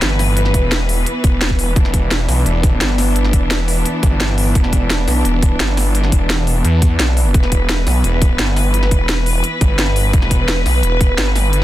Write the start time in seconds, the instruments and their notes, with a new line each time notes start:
Already playing: string section E3 B3 B4
0.02 detuned saw bass G1, snare, closed hi-hat
0.19 snare, open hi-hat
0.37 closed hi-hat
0.45 snare
0.54 detuned saw bass E1, kick, closed hi-hat
0.72 snare, closed hi-hat
0.89 open hi-hat
1.06 closed hi-hat
1.24 detuned saw bass E1, kick, closed hi-hat
1.41 snare, closed hi-hat
1.50 kick
1.59 detuned saw bass E1, open hi-hat
1.76 detuned saw bass E1, string section D4, kick, closed hi-hat
1.85 snare
1.94 kick, closed hi-hat
2.11 snare, closed hi-hat
2.29 detuned saw bass B1, snare, open hi-hat
2.46 detuned saw bass E1, closed hi-hat
2.63 kick, closed hi-hat
2.81 detuned saw bass G1, snare, closed hi-hat
2.98 snare, open hi-hat
3.16 closed hi-hat
3.24 snare
3.33 detuned saw bass E1, kick, closed hi-hat
3.51 snare, closed hi-hat
3.68 open hi-hat
3.86 closed hi-hat
4.03 detuned saw bass G1, kick, closed hi-hat
4.20 snare, closed hi-hat
4.38 open hi-hat
4.55 detuned saw bass E1, kick, closed hi-hat
4.64 snare
4.73 kick, closed hi-hat
4.90 snare, closed hi-hat
5.08 detuned saw bass B1, snare, open hi-hat
5.25 detuned saw bass E1, closed hi-hat
5.43 kick, closed hi-hat
5.60 detuned saw bass G1, snare, closed hi-hat
5.77 snare, open hi-hat
5.95 closed hi-hat
6.04 snare
6.12 detuned saw bass E1, kick, closed hi-hat
6.30 snare, closed hi-hat
6.47 open hi-hat
6.65 detuned saw bass E2, closed hi-hat
6.82 kick, closed hi-hat
6.99 detuned saw bass B1, snare, closed hi-hat
7.17 open hi-hat
7.34 detuned saw bass E1, string section B4, kick, closed hi-hat
7.43 snare
7.52 kick, closed hi-hat
7.69 snare, closed hi-hat
7.87 detuned saw bass B1, snare, open hi-hat
8.04 detuned saw bass E1, closed hi-hat
8.22 kick, closed hi-hat
8.39 detuned saw bass G1, snare, closed hi-hat
8.56 snare, open hi-hat
8.74 closed hi-hat
8.83 snare
8.91 detuned saw bass E1, kick, closed hi-hat
9.09 snare, closed hi-hat
9.26 open hi-hat
9.44 closed hi-hat
9.61 detuned saw bass G1, kick, closed hi-hat
9.79 snare, closed hi-hat
9.96 open hi-hat
10.13 detuned saw bass E1, kick, closed hi-hat
10.22 snare
10.31 kick, closed hi-hat
10.48 snare, closed hi-hat
10.66 detuned saw bass B1, snare, open hi-hat
10.83 detuned saw bass E1, closed hi-hat
11.01 kick, closed hi-hat
11.18 detuned saw bass G1, snare, closed hi-hat
11.36 snare, open hi-hat
11.53 closed hi-hat